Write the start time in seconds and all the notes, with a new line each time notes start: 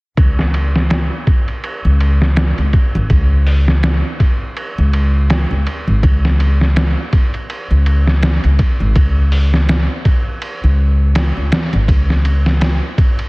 0.17 C#2, kick, ride
0.39 snare
0.54 ride
0.76 snare
0.90 snare, ride
1.27 kick, ride
1.48 ride
1.64 ride
1.85 C#2
2.00 ride
2.22 snare
2.36 snare, ride
2.58 C#2, ride
2.73 kick, ride
2.95 G#1
3.10 C#2, kick, ride
3.47 open hi-hat
3.68 snare
3.83 snare, ride
4.20 kick, ride
4.57 ride
4.78 C#2
4.93 ride
5.30 snare, ride
5.51 C#2
5.67 ride
5.87 G#1
6.03 C#2, kick, ride
6.25 snare
6.40 ride
6.61 snare
6.76 snare, ride
7.13 kick, ride
7.34 ride
7.50 ride
7.71 C#2
7.86 ride
8.07 snare
8.23 snare, ride
8.44 C#2, ride
8.59 kick, ride
8.80 G#1
8.96 C#2, kick, ride
9.32 open hi-hat
9.54 snare
9.69 snare, ride
10.05 kick, ride
10.42 ride
10.64 C#2
11.15 snare, ride
11.37 C#2
11.52 snare, ride
11.73 G#1, ride
11.88 C#2, kick, ride
12.10 snare
12.25 ride
12.46 snare
12.61 snare, ride
12.98 kick, ride
13.19 ride